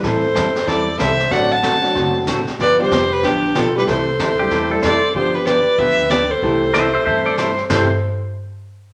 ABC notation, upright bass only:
X:1
M:4/4
L:1/8
Q:"Swing" 1/4=188
K:C
V:1 name="Upright bass" clef=bass
A,,2 F,,2 E,,2 C,,2 | A,,,2 G,,,2 ^F,,,2 A,,, z | G,,,2 F,,,2 A,,,2 B,,,2 | C,,2 D,,2 E,,2 F,,2 |
G,,,4 D,,4 | C,,4 G,,4 | C,, z6 z |]